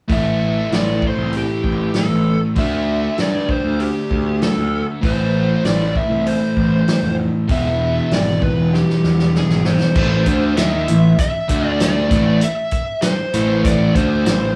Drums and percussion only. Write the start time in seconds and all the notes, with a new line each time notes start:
0.10 kick, open hi-hat
0.72 snare, open hi-hat
1.02 kick
1.33 open hi-hat
1.64 kick
1.94 snare, open hi-hat
2.56 kick, open hi-hat
3.18 snare, open hi-hat
3.49 kick
3.80 open hi-hat
4.11 kick
4.42 snare, open hi-hat
5.03 kick, open hi-hat
5.65 snare, open hi-hat
5.96 kick
6.26 open hi-hat
6.57 kick
6.88 snare, open hi-hat
7.49 kick, open hi-hat
8.11 snare, open hi-hat
8.42 kick
8.74 snare
8.90 snare
9.04 snare
9.19 snare
9.35 snare
9.50 snare
9.65 snare
9.80 snare
9.96 kick, crash
10.26 kick, closed hi-hat
10.57 snare, closed hi-hat
10.88 closed hi-hat
11.18 kick, closed hi-hat
11.49 kick, closed hi-hat
11.80 snare, closed hi-hat
12.11 kick, closed hi-hat
12.41 closed hi-hat
12.71 kick, closed hi-hat
13.02 snare, closed hi-hat
13.33 closed hi-hat
13.65 kick, closed hi-hat
13.95 kick, closed hi-hat
14.26 snare, closed hi-hat